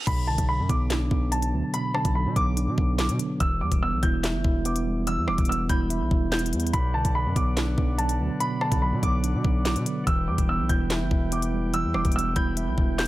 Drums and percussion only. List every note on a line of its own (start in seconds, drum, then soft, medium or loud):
0.07 kick loud
0.07 closed hi-hat medium
0.07 crash loud
0.38 kick medium
0.38 closed hi-hat medium
0.69 kick medium
0.69 closed hi-hat medium
0.90 snare loud
0.90 clap loud
0.90 closed hi-hat medium
1.11 kick loud
1.32 closed hi-hat medium
1.42 closed hi-hat medium
1.74 closed hi-hat medium
1.95 cross-stick loud
2.05 kick medium
2.05 closed hi-hat medium
2.36 kick loud
2.36 closed hi-hat medium
2.57 closed hi-hat medium
2.78 kick loud
2.99 snare loud
2.99 clap loud
2.99 closed hi-hat medium
3.09 closed hi-hat medium
3.19 closed hi-hat medium
3.40 kick loud
3.40 closed hi-hat medium
3.72 kick loud
3.72 closed hi-hat medium
4.03 kick loud
4.03 closed hi-hat medium
4.24 snare loud
4.24 clap loud
4.24 closed hi-hat medium
4.44 kick loud
4.65 closed hi-hat medium
4.76 closed hi-hat medium
5.07 closed hi-hat medium
5.28 cross-stick loud
5.38 kick medium
5.38 closed hi-hat soft
5.45 closed hi-hat medium
5.52 closed hi-hat medium
5.69 kick medium
5.69 closed hi-hat medium
5.90 closed hi-hat medium
6.11 kick loud
6.32 snare loud
6.32 clap loud
6.32 closed hi-hat medium
6.39 closed hi-hat medium
6.46 closed hi-hat medium
6.53 closed hi-hat medium
6.60 closed hi-hat medium
6.67 closed hi-hat medium
6.74 kick loud
6.74 closed hi-hat medium
7.05 kick loud
7.05 closed hi-hat medium
7.36 kick loud
7.36 closed hi-hat medium
7.57 snare loud
7.57 clap loud
7.57 closed hi-hat medium
7.78 kick loud
7.99 closed hi-hat medium
8.09 closed hi-hat medium
8.40 closed hi-hat medium
8.61 cross-stick loud
8.72 kick medium
8.72 closed hi-hat medium
9.03 kick loud
9.03 closed hi-hat medium
9.24 closed hi-hat medium
9.45 kick loud
9.65 snare loud
9.65 clap medium
9.65 closed hi-hat medium
9.76 closed hi-hat medium
9.86 closed hi-hat loud
10.07 kick loud
10.07 closed hi-hat medium
10.38 kick medium
10.38 closed hi-hat medium
10.69 kick medium
10.69 closed hi-hat medium
10.90 snare loud
10.90 clap loud
10.90 closed hi-hat medium
11.11 kick loud
11.32 closed hi-hat medium
11.42 closed hi-hat medium
11.74 closed hi-hat medium
11.94 cross-stick loud
12.05 kick medium
12.05 closed hi-hat soft
12.12 closed hi-hat medium
12.19 closed hi-hat medium
12.36 kick loud
12.36 closed hi-hat medium
12.57 closed hi-hat medium
12.78 kick loud
12.99 snare loud
12.99 clap medium
12.99 closed hi-hat medium